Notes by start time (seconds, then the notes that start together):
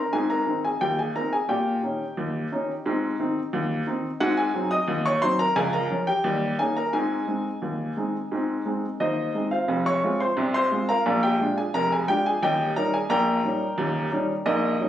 Already playing: A#4 A#5
0.13 G#2 C4 G#4 G#5
0.30 A#4 A#5
0.47 D#3 C4 D#4
0.65 G#4 G#5
0.81 D#2 G4 G5
0.99 G#4 G#5
1.16 D#3 C4 D#4 A#4 A#5
1.33 G#4 G#5
1.49 A#2 G4 G5
1.83 D#3 C#4 D#4
2.17 D#2
2.52 D#3 C#4 D#4
2.86 G#2 C4
3.19 D#3 C4 D#4
3.53 D#2
3.87 D#3 C4 D#4
4.20 G#2 C4 F#4 F#5
4.37 G#4 G#5
4.54 F#3 C4 D#4
4.71 D#5 D#6
4.88 D#2
5.06 C#5 C#6
5.22 F#3 C4 D#4 C5 C6
5.39 A#4 A#5
5.56 C#2 F3 G#4 G#5
5.73 A#4 A#5
5.90 F3 C#4 F4
6.07 G4 G5
6.24 D#2 G3
6.59 A#3 C#4 D#4 G#4 G#5
6.77 A#4 A#5
6.93 G#2 C4 G#4 G#5
7.27 G#3 C4 D#4
7.62 D#2
7.97 G#3 C4 D#4
8.32 G#2 C4
8.65 G#3 C4 D#4
9.00 D#2 D#4 C5 D#5
9.35 G#3 C4 D#4
9.51 F4 C5 F5
9.68 F1 F2
9.86 C#5 C#6
10.04 G#3 C4 F4
10.20 C5 C6
10.37 C2 C3
10.54 C5 C6
10.71 G#3 C4 F4
10.89 A#4 F5 A#5
11.06 A#1 A#2
11.23 G4 G5
11.40 G#3 D4 F4
11.58 G#4 G#5
11.74 F1 F2 A#4 A#5
11.92 G#4 G#5
12.08 G#3 D4 F4 G4 G5
12.26 G#4 G#5
12.43 D#1 D#2 G4 D#5 G5
12.76 G3 C#4 D#4 A#4 A#5
12.94 G#4 G#5
13.10 A#1 A#2 A#4 G5 A#5
13.44 G3 C#4 D#4
13.78 D#1 D#2
14.11 G3 C#4 D#4
14.46 A#1 A#2 D#4 A#4 D#5
14.80 G3 C#4 D#4